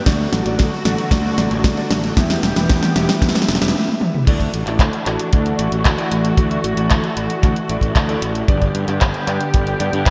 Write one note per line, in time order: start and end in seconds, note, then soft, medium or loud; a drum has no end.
0.06 0.26 D2 loud
0.06 2.15 D3 medium
0.06 2.15 F#3 medium
0.06 0.43 A3 medium
0.06 2.15 A3 medium
0.06 0.43 D4 medium
0.06 2.15 F#4 medium
0.06 0.43 F#4 medium
0.06 0.43 D5 loud
0.06 kick loud
0.06 snare medium
0.06 closed hi-hat medium
0.33 0.42 A1 medium
0.33 snare medium
0.33 closed hi-hat medium
0.46 0.55 A1 medium
0.46 0.66 A3 medium
0.46 0.66 D4 medium
0.46 0.66 F#4 medium
0.46 0.66 D5 medium
0.46 closed hi-hat medium
0.59 0.69 D2 medium
0.59 kick loud
0.59 snare medium
0.59 closed hi-hat medium
0.85 0.95 A1 medium
0.85 1.06 A3 medium
0.85 1.06 D4 medium
0.85 1.06 F#4 medium
0.85 1.06 D5 medium
0.85 snare medium
0.85 closed hi-hat medium
0.98 closed hi-hat medium
1.11 1.31 D2 medium
1.11 1.35 A3 medium
1.11 1.35 D4 medium
1.11 1.35 F#4 medium
1.11 1.35 D5 medium
1.11 kick loud
1.11 snare medium
1.11 closed hi-hat medium
1.38 1.48 A1 loud
1.38 1.74 A3 medium
1.38 1.74 D4 medium
1.38 1.74 F#4 medium
1.38 1.74 D5 loud
1.38 snare medium
1.38 closed hi-hat medium
1.51 1.61 A1 loud
1.51 closed hi-hat medium
1.64 1.74 D2 loud
1.64 kick loud
1.64 snare medium
1.64 closed hi-hat medium
1.77 2.14 A3 medium
1.77 2.14 D4 medium
1.77 2.14 F#4 medium
1.77 2.14 D5 loud
1.77 closed hi-hat soft
1.90 2.10 A1 medium
1.90 snare loud
1.90 closed hi-hat medium
2.04 closed hi-hat medium
2.17 2.36 E2 loud
2.17 3.73 E3 medium
2.17 3.73 G3 medium
2.17 2.53 B3 medium
2.17 3.73 B3 medium
2.17 2.53 E4 medium
2.17 2.53 G4 medium
2.17 3.73 G4 loud
2.17 2.53 E5 loud
2.17 kick loud
2.17 snare medium
2.17 closed hi-hat medium
2.30 snare medium
2.43 2.53 E1 medium
2.43 snare medium
2.43 closed hi-hat medium
2.56 2.66 E1 medium
2.56 2.77 B3 medium
2.56 2.77 E4 medium
2.56 2.77 G4 medium
2.56 2.77 E5 medium
2.56 snare medium
2.56 closed hi-hat soft
2.69 2.79 E2 medium
2.69 kick loud
2.69 snare loud
2.69 closed hi-hat medium
2.83 snare medium
2.83 closed hi-hat soft
2.96 3.05 E1 medium
2.96 3.16 B3 medium
2.96 3.16 E4 medium
2.96 3.16 G4 medium
2.96 3.16 E5 loud
2.96 snare loud
2.96 closed hi-hat medium
3.09 snare medium
3.09 closed hi-hat medium
3.22 3.32 E2 medium
3.22 3.45 B3 medium
3.22 3.45 E4 medium
3.22 3.45 G4 medium
3.22 3.45 E5 medium
3.22 kick loud
3.22 snare loud
3.22 closed hi-hat medium
3.29 snare medium
3.35 snare medium
3.42 snare medium
3.48 3.58 E1 medium
3.48 snare loud
3.48 closed hi-hat medium
3.55 snare medium
3.62 3.71 E1 medium
3.62 3.73 B3 loud
3.62 3.73 E4 loud
3.62 3.73 G4 medium
3.62 3.73 E5 loud
3.62 snare loud
3.62 closed hi-hat soft
3.68 snare medium
3.75 4.24 B3 medium
3.75 4.24 E4 medium
3.75 4.24 G4 medium
3.75 4.24 E5 loud
3.75 high tom medium
3.88 high tom medium
4.01 mid tom medium
4.14 mid tom medium
4.27 4.47 D2 loud
4.27 8.45 E3 medium
4.27 4.64 A3 medium
4.27 8.45 A3 medium
4.27 6.36 D4 medium
4.27 4.64 E4 medium
4.27 4.64 F#4 medium
4.27 8.45 F#4 loud
4.27 4.64 D5 loud
4.27 kick loud
4.27 closed hi-hat medium
4.27 crash loud
4.40 kick medium
4.40 closed hi-hat soft
4.54 4.63 A1 medium
4.54 closed hi-hat medium
4.67 4.77 A1 medium
4.67 4.87 A3 medium
4.67 4.87 E4 medium
4.67 4.87 F#4 medium
4.67 4.87 D5 medium
4.67 clap soft
4.67 closed hi-hat medium
4.79 4.89 D2 medium
4.79 kick loud
4.79 clap loud
4.79 closed hi-hat medium
4.93 closed hi-hat soft
5.06 5.16 A1 medium
5.06 5.27 A3 medium
5.06 5.27 E4 medium
5.06 5.27 F#4 medium
5.06 5.27 D5 medium
5.06 clap medium
5.06 closed hi-hat medium
5.19 closed hi-hat medium
5.33 5.52 D2 medium
5.33 5.56 A3 medium
5.33 5.56 E4 medium
5.33 5.56 F#4 medium
5.33 5.56 D5 medium
5.33 kick loud
5.33 closed hi-hat medium
5.46 closed hi-hat soft
5.59 5.69 A1 loud
5.59 5.95 A3 medium
5.59 5.95 E4 medium
5.59 5.95 F#4 medium
5.59 5.95 D5 loud
5.59 closed hi-hat medium
5.72 5.82 A1 medium
5.72 closed hi-hat medium
5.85 5.95 D2 loud
5.85 kick loud
5.85 clap loud
5.85 closed hi-hat medium
5.98 6.35 A3 medium
5.98 6.35 E4 medium
5.98 6.35 F#4 medium
5.98 6.35 D5 loud
5.98 closed hi-hat soft
6.12 6.31 A1 medium
6.12 closed hi-hat medium
6.25 closed hi-hat medium
6.37 6.57 D2 loud
6.37 6.74 A3 medium
6.37 6.74 E4 medium
6.37 6.74 F#4 medium
6.37 6.74 D5 loud
6.37 kick loud
6.37 closed hi-hat medium
6.51 closed hi-hat soft
6.64 6.74 A1 medium
6.64 closed hi-hat medium
6.77 6.87 A1 medium
6.77 6.98 A3 medium
6.77 6.98 E4 medium
6.77 6.98 F#4 medium
6.77 6.98 D5 medium
6.77 closed hi-hat medium
6.90 7.00 D2 medium
6.90 kick loud
6.90 clap loud
6.90 closed hi-hat medium
7.04 closed hi-hat soft
7.17 7.27 A1 medium
7.17 7.37 A3 medium
7.17 7.37 E4 medium
7.17 7.37 F#4 medium
7.17 7.37 D5 medium
7.17 closed hi-hat medium
7.30 closed hi-hat medium
7.43 7.53 D2 medium
7.43 7.66 A3 medium
7.43 7.66 E4 medium
7.43 7.66 F#4 medium
7.43 7.66 D5 medium
7.43 kick loud
7.43 clap soft
7.43 closed hi-hat medium
7.56 closed hi-hat soft
7.69 7.79 A1 loud
7.69 8.06 A3 medium
7.69 8.06 E4 medium
7.69 8.06 F#4 medium
7.69 8.06 D5 loud
7.69 closed hi-hat medium
7.81 7.92 A1 medium
7.81 kick medium
7.81 closed hi-hat medium
7.96 8.15 D2 loud
7.96 kick loud
7.96 clap loud
7.96 closed hi-hat medium
8.09 8.45 A3 loud
8.09 8.45 E4 medium
8.09 8.45 F#4 medium
8.09 8.45 D5 loud
8.09 closed hi-hat soft
8.22 8.41 A1 loud
8.22 closed hi-hat medium
8.35 closed hi-hat medium
8.48 8.68 G1 loud
8.48 10.10 D3 medium
8.48 10.10 G3 medium
8.48 8.85 B3 medium
8.48 10.10 B3 medium
8.48 8.85 D4 medium
8.48 8.85 G4 medium
8.48 10.10 G4 loud
8.48 8.85 D5 loud
8.48 kick loud
8.48 closed hi-hat medium
8.62 kick medium
8.62 closed hi-hat soft
8.75 8.84 G2 loud
8.75 closed hi-hat medium
8.88 8.98 G2 medium
8.88 9.08 B3 medium
8.88 9.08 D4 medium
8.88 9.08 G4 medium
8.88 9.08 D5 medium
8.88 clap soft
8.88 closed hi-hat soft
9.01 9.11 G1 medium
9.01 kick loud
9.01 clap loud
9.01 closed hi-hat medium
9.14 closed hi-hat soft
9.27 9.37 G2 medium
9.27 9.48 B3 medium
9.27 9.48 D4 medium
9.27 9.48 G4 medium
9.27 9.48 D5 loud
9.27 clap medium
9.27 closed hi-hat medium
9.41 closed hi-hat medium
9.54 9.73 G1 medium
9.54 9.77 B3 medium
9.54 9.77 D4 medium
9.54 9.77 G4 medium
9.54 9.77 D5 medium
9.54 kick loud
9.54 closed hi-hat medium
9.67 closed hi-hat soft
9.80 9.90 G2 loud
9.80 10.10 B3 medium
9.80 10.10 D4 medium
9.80 10.10 G4 medium
9.80 10.10 D5 loud
9.80 closed hi-hat medium
9.93 10.03 G2 loud
9.93 closed hi-hat soft
10.06 10.10 G1 loud
10.06 kick loud
10.06 clap loud
10.06 closed hi-hat medium